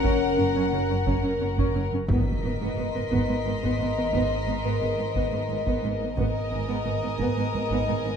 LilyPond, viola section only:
\new Staff \with { instrumentName = "Viola section" } { \time 3/4 \key gis \minor \tempo 4 = 88 cis'16 r16 cis'16 cis'16 cis'16 cis'16 cis'16 cis'16 cis'16 cis'16 cis'16 cis'16 | b16 r16 b16 b16 b16 b16 b16 b16 b16 b16 b16 b16 | b16 r16 b16 b16 b16 b16 b16 b16 b16 b16 b16 b16 | b16 r16 b16 b16 b16 b16 b16 b16 b16 b16 b16 b16 | }